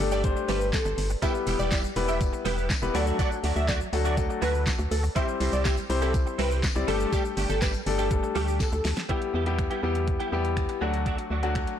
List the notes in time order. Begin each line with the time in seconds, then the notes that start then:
0.00 G1 G3 A3 D4 G4 A4, muted clean electric guitar stroke, tambourine
0.12 G3 A3 D4 G4 D5, shaker
0.24 G3 A3 D4 G4 C5, muted clean electric guitar stroke, kick, closed hi-hat, shaker
0.36 muted clean electric guitar stroke, shaker
0.48 G1 G3 A3 D4 G4 B4, open hi-hat, tambourine, shaker
0.61 muted clean electric guitar stroke, shaker
0.73 A4, muted clean electric guitar stroke, kick, snare, clap, closed hi-hat, tambourine, shaker
0.85 G1, muted clean electric guitar stroke, shaker
0.98 G1, open hi-hat, tambourine, shaker
1.10 muted clean electric guitar stroke, shaker
1.22 G3 B3 E4 G4 B4 E5, kick, closed hi-hat, tambourine, shaker
1.34 muted clean electric guitar stroke, shaker
1.47 E1 G3 B3 E4 G4, open hi-hat, tambourine, shaker
1.59 E1 G3 B3 E4 G4 D5, shaker
1.71 G3 B3 E4 G4 D5, kick, snare, clap, closed hi-hat, tambourine, shaker
1.84 muted clean electric guitar stroke, shaker
1.96 E1 G3 B3 E4 G4 B4, muted clean electric guitar stroke, open hi-hat, tambourine, shaker
2.08 G3 B3 E4 G4 E5, shaker
2.20 muted clean electric guitar stroke, kick, closed hi-hat, tambourine, shaker
2.33 muted clean electric guitar stroke, shaker
2.45 E1 G3 B3 E4 G4 B4, open hi-hat, tambourine, shaker
2.57 G3 B3 E4 G4, shaker
2.70 muted clean electric guitar stroke, kick, snare, clap, closed hi-hat, tambourine, shaker
2.82 E1 G3 B3 E4 G4 B4, muted clean electric guitar stroke, shaker
2.94 D2 F#3 A3 D4 F#4 A4 D5, open hi-hat, tambourine, shaker
3.06 F#3 A3 D4 F#4, shaker
3.19 F#3 A3 D4 F#4 D5, kick, closed hi-hat, tambourine, shaker
3.31 muted clean electric guitar stroke, shaker
3.43 D2 F#3 A3 D4 F#4, open hi-hat, tambourine, shaker
3.56 D2 F#3 A3 D4 F#4 E5, shaker
3.68 F#3 A3 D4 F#4 D5, kick, snare, clap, closed hi-hat, tambourine, shaker
3.80 muted clean electric guitar stroke, shaker
3.93 D2 F#3 A3 D4 F#4 A4, muted clean electric guitar stroke, open hi-hat, tambourine, shaker
4.05 F#3 A3 D4 F#4 D5, shaker
4.17 F#3 A3 D4 F#4 A4, muted clean electric guitar stroke, kick, closed hi-hat, tambourine, shaker
4.30 muted clean electric guitar stroke, shaker
4.42 D2 F#3 A3 D4 F#4 B4, open hi-hat, tambourine, shaker
4.54 muted clean electric guitar stroke, shaker
4.66 muted clean electric guitar stroke, kick, snare, clap, closed hi-hat, tambourine, shaker
4.79 D2, muted clean electric guitar stroke, shaker
4.91 D2 A4, open hi-hat, tambourine, shaker
5.03 muted clean electric guitar stroke, shaker
5.15 G3 C4 E4 G4 C5 E5, kick, closed hi-hat, tambourine, shaker
5.28 muted clean electric guitar stroke, shaker
5.40 C2 G3 C4 E4 G4, open hi-hat, tambourine, shaker
5.52 C2 G3 C4 E4 G4 D5, shaker
5.65 G3 C4 E4 G4, kick, snare, clap, closed hi-hat, tambourine, shaker
5.77 muted clean electric guitar stroke, shaker
5.89 C2 G3 C4 E4 G4 C5, muted clean electric guitar stroke, open hi-hat, tambourine, shaker
6.02 G3 C4 E4 G4 A4, shaker
6.14 muted clean electric guitar stroke, kick, closed hi-hat, tambourine, shaker
6.26 muted clean electric guitar stroke, shaker
6.38 C2 G3 C4 E4 G4 B4, open hi-hat, tambourine, shaker
6.51 G3 C4 E4 G4, shaker
6.63 muted clean electric guitar stroke, kick, snare, clap, closed hi-hat, tambourine, shaker
6.75 C2 G3 C4 E4 G4 D5, muted clean electric guitar stroke, shaker
6.88 G1 G3 A3 D4 G4 A4, open hi-hat, tambourine, shaker
7.00 G3 A3 D4 G4, shaker
7.12 G3 A3 D4 G4, kick, closed hi-hat, tambourine, shaker
7.25 muted clean electric guitar stroke, shaker
7.37 G1 G3 A3 D4 G4, open hi-hat, tambourine, shaker
7.49 G1 G3 A3 D4 G4 A4, shaker
7.61 G3 A3 D4 G4 B4, kick, snare, clap, closed hi-hat, tambourine, shaker
7.74 muted clean electric guitar stroke, shaker
7.86 G1 G3 A3 D4 G4 A4, muted clean electric guitar stroke, open hi-hat, tambourine, shaker
7.98 G3 A3 D4 G4 A4, shaker
8.11 G3 A3 D4 G4 A4, muted clean electric guitar stroke, kick, closed hi-hat, shaker
8.23 muted clean electric guitar stroke, shaker
8.35 D2 G3 A3 D4 G4, open hi-hat, tambourine, shaker
8.47 G3 A3 D4 G4, shaker
8.60 A4, muted clean electric guitar stroke, kick, snare, closed hi-hat, tambourine, shaker
8.72 D2, muted clean electric guitar stroke, shaker
8.85 D2, snare, open hi-hat, tambourine, shaker
8.97 muted clean electric guitar stroke, snare, shaker
9.09 G3 B3 E4 G4, kick, closed hi-hat
9.21 muted clean electric guitar stroke, closed hi-hat
9.34 E2 G3 B3 E4 G4
9.46 G3 B3 E4 G4, closed hi-hat
9.58 finger snap, muted clean electric guitar stroke, kick, closed hi-hat
9.70 G3 B3 E4 G4, closed hi-hat
9.83 E2 G3 B3 E4 G4
9.95 muted clean electric guitar stroke, closed hi-hat
10.07 muted clean electric guitar stroke, kick, closed hi-hat
10.20 G3 B3 E4 G4, closed hi-hat
10.32 E2 G3 B3 E4 G4
10.44 muted clean electric guitar stroke, closed hi-hat
10.57 finger snap, kick, closed hi-hat
10.69 muted clean electric guitar stroke, closed hi-hat
10.81 D2 F#3 A3 D4 F#4
10.94 muted clean electric guitar stroke, closed hi-hat
11.06 F#3 A3 D4 F#4, kick, closed hi-hat
11.18 muted clean electric guitar stroke, closed hi-hat
11.30 D2 F#3 A3 D4 F#4
11.43 F#3 A3 D4 F#4, closed hi-hat
11.55 finger snap, kick, closed hi-hat
11.67 muted clean electric guitar stroke, closed hi-hat